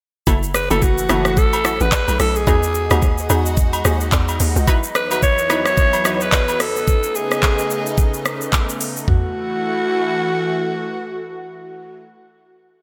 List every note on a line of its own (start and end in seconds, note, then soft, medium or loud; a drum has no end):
0.27 0.69 F#1 loud
0.27 1.91 E3 medium
0.27 1.91 A3 medium
0.27 0.39 E4 medium
0.27 0.40 F#4 medium
0.27 1.91 F#4 medium
0.27 0.40 A4 loud
0.27 kick loud
0.27 high agogo medium
0.27 shaker medium
0.43 shaker medium
0.55 0.70 B4 loud
0.55 cross-stick medium
0.55 shaker medium
0.70 1.08 F#1 loud
0.70 0.79 E4 medium
0.70 0.80 F#4 medium
0.70 0.80 A4 medium
0.70 0.85 A4 loud
0.70 high agogo medium
0.70 shaker medium
0.82 1.39 F#4 loud
0.82 kick medium
0.82 shaker medium
0.98 shaker medium
1.09 1.39 F#1 loud
1.09 1.22 E4 medium
1.09 1.22 F#4 medium
1.09 1.22 A4 medium
1.09 cross-stick loud
1.09 high agogo medium
1.09 shaker medium
1.25 cross-stick loud
1.25 shaker medium
1.37 1.79 A1 medium
1.37 1.83 A4 loud
1.37 kick loud
1.37 shaker medium
1.53 high agogo medium
1.53 shaker medium
1.65 1.77 E4 medium
1.65 1.77 F#4 medium
1.65 1.77 A4 medium
1.65 cross-stick loud
1.65 shaker medium
1.80 1.92 A1 medium
1.80 2.20 B4 loud
1.80 shaker soft
1.92 kick loud
1.92 clap loud
1.92 low woodblock medium
1.92 shaker medium
2.08 2.19 B1 medium
2.08 high agogo medium
2.08 shaker medium
2.20 2.46 B1 medium
2.20 2.38 A4 loud
2.20 cross-stick medium
2.20 open hi-hat medium
2.20 shaker loud
2.36 3.46 G#4 loud
2.36 shaker medium
2.47 2.89 E2 loud
2.47 4.65 G#3 medium
2.47 2.60 D#4 medium
2.47 6.56 D#4 medium
2.47 2.60 F#4 medium
2.47 4.65 F#4 medium
2.47 2.60 G#4 loud
2.47 kick loud
2.47 high agogo medium
2.47 shaker medium
2.63 shaker medium
2.75 shaker loud
2.90 3.28 D#2 medium
2.90 3.00 D#4 medium
2.90 3.00 F#4 medium
2.90 3.00 G#4 medium
2.90 cross-stick loud
2.90 high agogo medium
2.90 shaker medium
3.02 kick loud
3.02 shaker medium
3.18 shaker medium
3.30 3.83 E2 loud
3.30 3.42 D#4 medium
3.30 3.42 F#4 medium
3.30 3.42 G#4 medium
3.30 high agogo medium
3.30 shaker medium
3.46 shaker medium
3.57 kick loud
3.57 shaker medium
3.73 high agogo medium
3.73 shaker medium
3.85 4.11 D#2 medium
3.85 3.97 D#4 medium
3.85 3.97 F#4 medium
3.85 3.97 G#4 medium
3.85 cross-stick medium
3.85 shaker medium
4.01 shaker medium
4.12 4.39 E2 loud
4.12 kick loud
4.12 clap medium
4.12 low woodblock medium
4.12 shaker medium
4.28 high agogo medium
4.28 shaker medium
4.40 4.55 D#2 medium
4.40 open hi-hat medium
4.40 shaker loud
4.56 4.67 C#2 medium
4.56 shaker medium
4.67 6.58 E2 medium
4.67 6.58 F#3 medium
4.67 9.04 B3 medium
4.67 4.80 D#4 medium
4.67 4.80 E4 medium
4.67 6.58 E4 medium
4.67 4.80 F#4 medium
4.67 4.80 B4 loud
4.67 kick loud
4.67 high agogo medium
4.67 shaker medium
4.83 shaker medium
4.95 5.10 B4 loud
4.95 cross-stick medium
4.95 shaker medium
5.11 5.20 D#4 medium
5.11 5.20 E4 medium
5.11 5.20 F#4 medium
5.11 5.20 B4 medium
5.11 5.22 B4 loud
5.11 high agogo medium
5.11 shaker medium
5.22 5.63 C#5 loud
5.22 kick medium
5.22 shaker medium
5.38 shaker medium
5.50 5.62 D#4 medium
5.50 5.62 E4 medium
5.50 5.63 F#4 medium
5.50 5.63 B4 medium
5.50 cross-stick loud
5.50 high agogo medium
5.50 shaker medium
5.66 6.23 C#5 loud
5.66 cross-stick loud
5.66 shaker medium
5.77 kick loud
5.77 shaker medium
5.93 high agogo medium
5.93 shaker medium
6.05 6.17 D#4 medium
6.05 6.17 E4 medium
6.05 6.18 F#4 medium
6.05 6.18 B4 medium
6.05 cross-stick loud
6.05 shaker loud
6.21 6.62 B4 loud
6.21 shaker soft
6.32 kick loud
6.32 clap medium
6.32 low woodblock medium
6.32 shaker medium
6.48 high agogo medium
6.48 shaker medium
6.60 9.05 C#3 medium
6.60 9.05 A3 medium
6.60 9.05 D#4 medium
6.60 7.17 A4 loud
6.60 cross-stick medium
6.60 open hi-hat medium
6.60 shaker loud
6.76 shaker medium
6.88 kick loud
6.88 shaker medium
7.03 shaker medium
7.15 8.26 G#4 loud
7.15 shaker medium
7.31 cross-stick medium
7.31 shaker medium
7.43 kick loud
7.43 clap medium
7.43 shaker medium
7.59 shaker medium
7.70 shaker medium
7.86 shaker medium
7.98 kick loud
7.98 shaker medium
8.14 shaker medium
8.26 cross-stick medium
8.26 shaker medium
8.41 shaker medium
8.53 kick medium
8.53 clap medium
8.53 shaker medium
8.69 shaker medium
8.81 open hi-hat medium
8.81 shaker loud
8.97 shaker medium
9.08 12.04 E3 medium
9.08 12.04 A3 medium
9.08 12.04 F#4 medium
9.08 12.04 F#4 loud
9.08 kick loud
9.08 floor tom loud